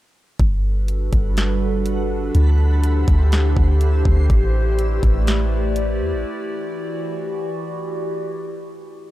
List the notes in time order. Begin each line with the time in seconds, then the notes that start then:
0.39 G1 G3 D4 F#4 A4 B4 F#5 B5, kick, closed hi-hat
0.88 closed hi-hat
1.13 G1, kick, closed hi-hat
1.37 snare, closed hi-hat
1.86 closed hi-hat
2.35 D2 D3 E4 G4 C5 E5 C6, closed hi-hat
2.84 closed hi-hat
3.08 D2, kick, closed hi-hat
3.32 snare, closed hi-hat
3.57 D2, kick
3.81 closed hi-hat
4.05 D2, kick
4.30 A1 A3 E4 B4 D5, kick, closed hi-hat
4.79 closed hi-hat
5.03 A1, kick, closed hi-hat
5.27 snare, closed hi-hat
5.76 closed hi-hat
6.01 E2
6.13 A1
6.25 E3 F#4